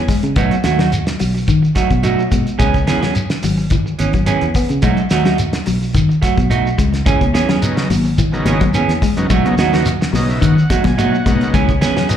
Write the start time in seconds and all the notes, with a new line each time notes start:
0.08 G#3, muted clean electric guitar stroke, kick, open hi-hat, shekere
0.23 C#3, muted clean electric guitar stroke, closed hi-hat, shekere
0.36 B1 F#3 A3 B3 D#4 F#4, kick, closed hi-hat, shekere
0.51 closed hi-hat, shekere
0.64 D#2 F#3 A3 F#4, snare, closed hi-hat, shekere
0.79 F#3 A3 D#4 F#4, snare, closed hi-hat, shekere
0.92 muted clean electric guitar stroke, closed hi-hat, shekere
1.07 muted clean electric guitar stroke, snare, closed hi-hat, shekere
1.19 B1 F#3, muted clean electric guitar stroke, open hi-hat, shekere
1.34 muted clean electric guitar stroke, shekere
1.48 D#3, kick, closed hi-hat, shekere
1.62 muted clean electric guitar stroke, shekere
1.75 F#3 A3 D#4 F#4, kick, snare, closed hi-hat, shekere
1.90 B2 F#3, muted clean electric guitar stroke, kick, closed hi-hat, shekere
2.03 F#3 A3 D#4 F#4, closed hi-hat, shekere
2.19 shekere
2.31 B2 G#3, muted clean electric guitar stroke, kick, closed hi-hat, shekere
2.46 muted clean electric guitar stroke, closed hi-hat, shekere
2.58 C#2 G#3 B3 C#4 G#4, muted clean electric guitar stroke, kick, closed hi-hat, shekere
2.74 kick, closed hi-hat, shekere
2.87 E2 E3 B3 C#4 G#4, snare, closed hi-hat, shekere
3.01 F#3 B3 C#4 G#4, snare, closed hi-hat, shekere
3.15 muted clean electric guitar stroke, closed hi-hat, shekere
3.30 muted clean electric guitar stroke, snare, closed hi-hat, shekere
3.43 G#1 F#3, muted clean electric guitar stroke, open hi-hat, shekere
3.58 muted clean electric guitar stroke, shekere
3.70 E3, kick, closed hi-hat, shekere
3.86 muted clean electric guitar stroke, shekere
3.99 G#1 E3 B3 C#4, muted clean electric guitar stroke, closed hi-hat, shekere
4.13 F#3, muted clean electric guitar stroke, kick, closed hi-hat, shekere
4.26 E3 B3 C#4 G#4, closed hi-hat, shekere
4.41 E2, closed hi-hat, shekere
4.54 B3, muted clean electric guitar stroke, kick, open hi-hat, shekere
4.69 C#3, muted clean electric guitar stroke, closed hi-hat, shekere
4.82 B1 F#3 G#3 A3 D#4 F#4, kick, closed hi-hat, shekere
4.97 closed hi-hat, shekere
5.10 D#2 F#3 A3 D#4 F#4, snare, closed hi-hat, shekere
5.25 F#3 A3 D#4 F#4, snare, closed hi-hat, shekere
5.38 muted clean electric guitar stroke, closed hi-hat, shekere
5.53 muted clean electric guitar stroke, snare, closed hi-hat, shekere
5.66 B1 F#3, muted clean electric guitar stroke, open hi-hat, shekere
5.81 muted clean electric guitar stroke, shekere
5.94 D#3, kick, closed hi-hat, shekere
6.09 muted clean electric guitar stroke, shekere
6.21 F#3 A3 F#4, kick, snare, closed hi-hat, shekere
6.37 B2 F#3, muted clean electric guitar stroke, kick, closed hi-hat, shekere
6.50 B1 A3 D#4 F#4, muted clean electric guitar stroke, closed hi-hat, shekere
6.67 shekere
6.78 C#2 G#3, muted clean electric guitar stroke, kick, closed hi-hat, shekere
6.93 muted clean electric guitar stroke, snare, closed hi-hat, shekere
7.06 C#2 E3 C#4 G#4, muted clean electric guitar stroke, kick, closed hi-hat, shekere
7.21 kick, closed hi-hat, high conga, shekere
7.34 E2 E3 B3 C#4 G#4, snare, closed hi-hat, shekere
7.48 F#3 B3 C#4 G#4, snare, closed hi-hat, shekere
7.61 C#3 F#3 B3 D#4, muted clean electric guitar stroke, closed hi-hat, shekere
7.77 muted clean electric guitar stroke, snare, closed hi-hat, shekere
7.90 G#1 F#3, muted clean electric guitar stroke, open hi-hat, high conga, shekere
8.05 muted clean electric guitar stroke, shekere
8.18 E3, kick, closed hi-hat, shekere
8.32 C#3 F#3 B3 D#4, muted clean electric guitar stroke, shekere
8.45 G#1 E3 B3 C#4 G#4, closed hi-hat, high conga, shekere
8.61 F#3, muted clean electric guitar stroke, kick, closed hi-hat, high conga, shekere
8.74 E3 B3 C#4 G#4, closed hi-hat, high conga, shekere
8.88 E2, snare, closed hi-hat, high conga, shekere
9.02 G#3, muted clean electric guitar stroke, kick, open hi-hat, shekere
9.17 F#2 C#3 F#3 B3 D#4, muted clean electric guitar stroke, closed hi-hat, shekere
9.30 B1 F#3 G#3 A3 D#4 F#4, kick, closed hi-hat, shekere
9.45 C#3 F#3 B3 D#4, closed hi-hat, high conga, shekere
9.57 D#2 F#3 A3 D#4 F#4, snare, closed hi-hat, shekere
9.73 C#3 F#3 A3 B3 D#4 F#4, snare, closed hi-hat, shekere
9.86 muted clean electric guitar stroke, closed hi-hat, shekere
10.01 muted clean electric guitar stroke, snare, closed hi-hat, shekere
10.13 B1 C#3 F#3 B3 D#4 D#5, muted clean electric guitar stroke, open hi-hat, high conga, shekere
10.29 E5, muted clean electric guitar stroke, shekere
10.41 D#3 F#5, kick, closed hi-hat, shekere
10.57 muted clean electric guitar stroke, shekere
10.70 F#3 A3 D#4 F#4, kick, closed hi-hat, high conga, shekere
10.84 B2 F#3 G#5, muted clean electric guitar stroke, kick, snare, closed hi-hat, high conga, shekere
10.98 F#3 A3 D#4 F#4 F#5, closed hi-hat, high conga, shekere
11.14 shekere
11.26 B1 C#3 F#3 G#3 B3 D#4, muted clean electric guitar stroke, kick, closed hi-hat, high conga, shekere
11.41 muted clean electric guitar stroke, closed hi-hat, shekere
11.54 C#2 E3 G#3 B3 C#4 G#4, kick, closed hi-hat, shekere
11.69 kick, closed hi-hat, shekere
11.81 E2 B3 C#4 G#4, snare, closed hi-hat, shekere
11.96 F#3 B3 C#4 G#4, snare, closed hi-hat, shekere
12.09 C#3 F#3 B3 D#4, muted clean electric guitar stroke, closed hi-hat, shekere